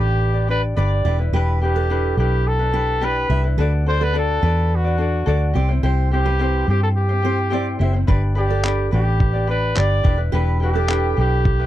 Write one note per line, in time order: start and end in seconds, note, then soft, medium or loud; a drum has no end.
0.00 0.73 A1 medium
0.00 0.35 D4 medium
0.00 0.34 G4 medium
0.00 0.46 G4 medium
0.00 0.34 B4 medium
0.00 0.46 B4 medium
0.00 0.32 D5 medium
0.33 0.48 D4 soft
0.33 0.49 G4 soft
0.33 0.48 D5 soft
0.48 0.76 D4 medium
0.48 0.77 G4 medium
0.48 0.75 B4 medium
0.48 0.62 B4 medium
0.48 0.77 D5 medium
0.76 1.03 G1 medium
0.76 1.04 D4 medium
0.76 1.04 G4 medium
0.76 1.04 B4 medium
0.76 1.16 D5 medium
0.76 0.91 D5 medium
0.76 1.06 D5 medium
1.05 1.31 E1 medium
1.05 1.19 D4 medium
1.05 1.20 E4 medium
1.05 1.19 G4 soft
1.05 1.18 B4 medium
1.05 1.18 D5 medium
1.19 1.33 D4 soft
1.19 1.34 E4 soft
1.19 1.33 B4 soft
1.32 2.13 E1 medium
1.32 1.61 D4 medium
1.32 1.62 E4 medium
1.32 1.60 G4 medium
1.32 1.60 B4 medium
1.32 1.63 B4 medium
1.61 1.76 D4 medium
1.61 1.75 E4 medium
1.61 1.76 G4 soft
1.61 2.15 G4 medium
1.61 1.73 B4 medium
1.75 1.89 D4 soft
1.75 1.90 E4 soft
1.75 2.15 A4 medium
1.75 1.89 B4 soft
1.89 2.17 D4 medium
1.89 2.18 E4 medium
1.89 2.16 G4 medium
1.89 2.19 B4 medium
2.17 3.26 B1 medium
2.17 2.60 D4 medium
2.17 2.60 E4 medium
2.17 2.60 G4 medium
2.17 2.49 G4 medium
2.17 2.58 B4 medium
2.48 3.06 A4 medium
2.59 2.72 D4 soft
2.59 2.73 E4 soft
2.59 2.73 B4 soft
2.72 3.01 D4 medium
2.72 3.01 E4 medium
2.72 3.00 G4 soft
2.72 2.87 B4 medium
2.72 3.02 B4 medium
3.01 3.30 D4 medium
3.01 3.30 E4 medium
3.01 3.28 G4 medium
3.01 3.31 B4 medium
3.01 3.46 B4 medium
3.01 3.16 D5 medium
3.29 3.56 C2 medium
3.29 3.45 D4 medium
3.29 3.43 E4 medium
3.29 3.44 G4 medium
3.29 3.42 B4 medium
3.29 3.43 E5 medium
3.44 3.58 D4 soft
3.44 3.59 E4 soft
3.44 3.58 B4 medium
3.58 4.38 D2 medium
3.58 3.86 D4 medium
3.58 3.87 F#4 medium
3.58 3.85 A4 medium
3.58 3.71 B4 medium
3.58 3.88 D5 medium
3.86 4.01 D4 medium
3.86 4.00 F#4 medium
3.86 4.00 A4 medium
3.86 4.05 C5 loud
3.86 3.99 D5 medium
4.00 4.13 D4 soft
4.00 4.14 F#4 soft
4.00 4.14 A4 medium
4.00 4.16 B4 medium
4.00 4.14 D5 soft
4.13 4.41 D4 medium
4.13 4.42 F#4 medium
4.13 4.40 A4 medium
4.13 4.43 D5 medium
4.19 4.77 A4 medium
4.41 5.23 E2 medium
4.41 4.85 D4 medium
4.41 4.85 F#4 soft
4.41 4.84 A4 medium
4.41 4.96 B4 medium
4.41 4.83 D5 medium
4.76 5.58 F#4 medium
4.84 4.97 D4 soft
4.84 4.99 F#4 soft
4.84 4.99 D5 soft
4.98 5.26 D4 medium
4.98 5.26 F#4 medium
4.98 5.25 A4 medium
4.98 5.27 D5 medium
5.26 5.53 D2 medium
5.26 5.54 D4 medium
5.26 5.55 F#4 medium
5.26 5.53 A4 medium
5.26 5.41 D5 medium
5.26 5.56 D5 medium
5.53 5.81 C2 medium
5.53 5.69 C4 medium
5.53 5.70 E4 medium
5.53 5.68 G4 medium
5.53 5.67 C5 medium
5.53 5.69 D5 medium
5.69 5.83 C4 soft
5.69 5.83 E4 medium
5.69 5.83 C5 medium
5.83 6.63 C2 medium
5.83 6.11 C4 medium
5.83 6.12 E4 medium
5.83 6.10 G4 medium
5.83 6.10 C5 medium
5.83 6.12 C5 medium
6.11 6.26 C4 medium
6.11 6.26 E4 medium
6.11 6.25 G4 medium
6.11 6.65 G4 medium
6.11 6.24 C5 medium
6.25 6.39 C4 soft
6.25 6.40 E4 soft
6.25 6.65 B4 medium
6.25 6.39 C5 soft
6.39 6.67 C4 medium
6.39 6.68 E4 medium
6.39 6.66 G4 medium
6.39 6.69 C5 medium
6.67 7.76 G2 medium
6.67 7.10 C4 soft
6.67 7.09 E4 medium
6.67 7.10 G4 soft
6.67 6.82 G4 medium
6.67 7.08 C5 medium
6.83 6.89 A4 medium
6.97 7.76 G4 medium
7.09 7.22 C4 soft
7.09 7.24 E4 soft
7.09 7.23 C5 medium
7.22 7.50 C4 medium
7.22 7.51 E4 medium
7.22 7.49 G4 medium
7.22 7.38 C5 medium
7.22 7.51 C5 medium
7.50 7.79 C4 medium
7.50 7.80 E4 medium
7.50 7.78 G4 medium
7.50 7.80 C5 medium
7.50 7.66 D5 medium
7.79 8.06 F#1 medium
7.79 7.94 C4 medium
7.79 7.93 E4 medium
7.79 7.94 G4 medium
7.79 7.92 C5 medium
7.79 7.94 E5 medium
7.93 8.08 C4 soft
7.93 8.08 E4 soft
7.93 8.08 C5 soft
8.07 8.89 G1 medium
8.07 8.35 D4 medium
8.07 8.36 G4 medium
8.07 8.34 B4 medium
8.07 8.22 B4 medium
8.07 8.37 D5 medium
8.07 kick medium
8.35 8.50 D4 medium
8.35 8.49 G4 medium
8.35 8.89 G4 medium
8.35 8.50 B4 medium
8.35 8.47 D5 medium
8.48 8.63 D4 soft
8.48 8.64 G4 soft
8.48 8.64 A4 medium
8.48 8.63 D5 soft
8.64 8.91 D4 medium
8.64 8.92 G4 medium
8.64 8.90 B4 medium
8.64 8.93 D5 medium
8.64 clap loud
8.91 9.73 A1 medium
8.91 9.35 D4 medium
8.91 9.34 G4 medium
8.91 9.46 G4 medium
8.91 9.34 B4 soft
8.91 9.45 B4 medium
8.91 9.32 D5 medium
9.20 kick loud
9.33 9.47 D4 soft
9.33 9.48 G4 soft
9.33 9.48 D5 soft
9.47 9.75 D4 medium
9.47 9.76 G4 medium
9.47 9.74 B4 medium
9.47 9.80 B4 medium
9.47 9.76 D5 medium
9.75 10.03 G1 medium
9.75 10.03 D4 medium
9.75 10.02 G4 medium
9.75 10.03 B4 medium
9.75 9.90 D5 medium
9.75 10.05 D5 medium
9.75 10.20 D5 medium
9.75 clap loud
10.03 10.31 E1 medium
10.03 10.19 D4 medium
10.03 10.17 E4 medium
10.03 10.18 G4 soft
10.03 10.16 B4 medium
10.03 10.18 D5 medium
10.03 kick loud
10.17 10.32 D4 soft
10.17 10.32 E4 soft
10.17 10.32 B4 medium
10.32 11.13 E1 medium
10.32 10.60 D4 medium
10.32 10.61 E4 medium
10.32 10.59 G4 medium
10.32 10.59 B4 medium
10.32 10.62 B4 medium
10.60 10.75 D4 soft
10.60 10.74 E4 medium
10.60 10.74 G4 medium
10.60 10.72 B4 medium
10.65 11.15 G4 medium
10.73 10.87 D4 soft
10.73 10.87 E4 soft
10.73 11.15 A4 medium
10.73 10.88 B4 soft
10.87 11.17 D4 medium
10.87 11.17 E4 medium
10.87 11.15 G4 medium
10.87 11.17 B4 medium
10.87 clap medium
11.17 11.66 B1 medium
11.17 11.60 D4 medium
11.17 11.60 E4 soft
11.17 11.59 G4 medium
11.17 11.66 G4 medium
11.17 11.58 B4 medium
11.45 kick medium
11.59 11.66 D4 soft
11.59 11.66 E4 soft
11.59 11.66 B4 medium